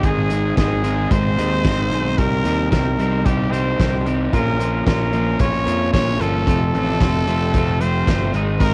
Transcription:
0.03 G#1 G#2 D#3 G#3 C4 D#4 G#4, kick, closed hi-hat
0.30 G#2 D#3 G#3 C4 D#4 G#4, closed hi-hat
0.57 G#1 G#2 D#3 G#3 C4 D#4 G#4, kick, snare, closed hi-hat
0.83 G#2 D#3 G#3 C4 D#4 G#4, closed hi-hat
1.10 G#1 G#2 D#3 G#3 C4 D#4 G#4 C5, kick, closed hi-hat
1.37 D#2 G#2 D#3 G#3 C4 D#4 G#4, closed hi-hat
1.64 G#1 G#2 D#3 G#3 C4 D#4 G#4, kick, snare, closed hi-hat
1.91 B1 G#2 D#3 G#3 C4 D#4 G#4, closed hi-hat
2.18 C2 C3 D#3 G3 C4 D#4 G4 A#4, kick, closed hi-hat
2.44 D#2 C3 D#3 G3 C4 D#4 G4, closed hi-hat
2.71 C2 C3 D#3 G3 C4 D#4 G4 A#4, kick, snare, closed hi-hat
2.98 C2 C3 D#3 G3 C4 D#4 G4, closed hi-hat
3.24 C2 C3 D#3 G3 C4 D#4 G4, kick, closed hi-hat
3.51 C3 D#3 G3 C4 D#4 G4 C5, closed hi-hat
3.79 C2 C3 D#3 G3 C4 D#4 G4, kick, snare, closed hi-hat
4.04 C3 D#3 G3 C4 G4, closed hi-hat
4.08 D#4
4.32 A#1 A#2 F3 A#3 C#4 F4 A#4, kick, closed hi-hat
4.59 A#2 F3 A#3 C#4 F4, closed hi-hat
4.85 A#1 A#2 F3 A#3 C#4 F4 A#4, kick, snare, closed hi-hat
5.11 A#2 F3 A#3 C#4 F4, closed hi-hat
5.39 A#1 A#2 F3 A#3 C#4 F4 C#5, kick, closed hi-hat
5.65 F2 A#2 F3 A#3 C#4 F4, closed hi-hat
5.92 A#1 A#2 F3 A#3 C#4 F4 C#5, kick, snare, closed hi-hat
6.19 G1 A#2 F3 A#3 C#4 F4 A4, closed hi-hat
6.46 F1 F2 C3 F3 A3 C4 F4, kick, closed hi-hat
6.73 A1 F2 C3 F3 A3 C4 F4, closed hi-hat
7.00 F1 F2 C3 F3 A3 C4 F4, kick, snare, closed hi-hat
7.26 F1 F2 C3 F3 A3 C4 F4, closed hi-hat
7.54 F1 F2 C3 F3 A3 C4 F4, kick, closed hi-hat
7.79 F2 C3 F3 A3 C4 F4 C5, closed hi-hat
8.07 G1 F2 C3 F3 A3 C4 F4, kick, snare, closed hi-hat
8.33 G#1 G#2 D#3 G#3 C4 D#4 G#4, closed hi-hat
8.59 G#1 G#2 D#3 G#3 C4 D#4 G#4 A#4, kick, closed hi-hat

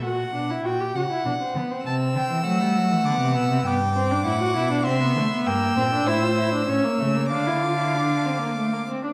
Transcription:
0.04 A#2 F#4 F#5
0.34 B2 D4
0.50 E4
0.65 A#2 F#4 G5
0.81 G4
0.95 C#3 F#4 F#5
1.11 E4
1.25 B2 D4
1.41 C4
1.55 D3 B3
1.71 C4
1.85 C3 C4 A5 E6
2.15 D3 G5
2.30 E3
2.45 F#3 A3 F#5
2.61 G3
2.76 F#3
2.91 E3
3.05 D3 B3 D6
3.21 C3
3.36 B2 E6
3.51 C3
3.66 G2 B3 G5 D6
3.96 C4
4.11 D4
4.25 A2 E4 F#5
4.41 F#4
4.56 B2 E4
4.72 D4
4.85 C3 C4 E5 C6
5.02 B3
5.16 D3 A3
5.32 B3
5.46 G2 A#3 G5 E6
5.77 A#2 C4
5.92 D4
6.07 A2 E4 C5
6.22 F4
6.38 E4
6.54 D4
6.68 A2 C#4 C#5
6.84 A#3
7.00 C#3 A3
7.15 A#3
7.31 D3 D4 F5 D6
7.47 E4
7.62 F4
7.79 E4
7.95 D4
8.26 C4
8.41 A#3
8.57 A3
8.73 A#3
8.89 C4
9.03 D4

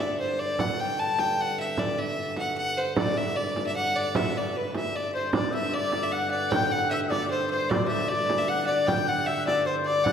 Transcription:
Already playing: G2 D3
0.00 D5, frame drum
0.20 C5
0.39 D5, frame drum
0.59 G2 D3 F#5, frame drum
0.80 G5
0.99 A5
1.18 G5, frame drum
1.38 F#5, frame drum
1.58 E5, frame drum
1.77 D5, frame drum
1.98 E5
2.36 F#5, frame drum
2.57 F#5, frame drum
2.77 C5, frame drum
2.96 D5, frame drum
3.17 E5
3.37 D5
3.56 frame drum
3.66 E5
3.76 F#5, frame drum
3.95 D5, frame drum
4.15 E5, frame drum
4.35 D5, frame drum
4.57 B4
4.75 E5, frame drum
4.96 D5
5.14 C5
5.33 G2 D3 D5, frame drum
5.53 E5
5.73 D5
5.92 frame drum
6.03 E5
6.12 F#5, frame drum
6.31 D5
6.50 G5, frame drum
6.71 F#5
6.90 E5
7.10 D5, frame drum
7.31 C5, frame drum
7.50 C5, frame drum
7.70 D5, frame drum
7.88 E5
8.08 D5
8.30 frame drum
8.38 E5
8.48 F#5, frame drum
8.66 D5, frame drum
8.87 G5, frame drum
9.07 F#5
9.26 E5
9.47 D5, frame drum
9.66 C5
9.84 D5
10.04 G2 D3 F#5, frame drum

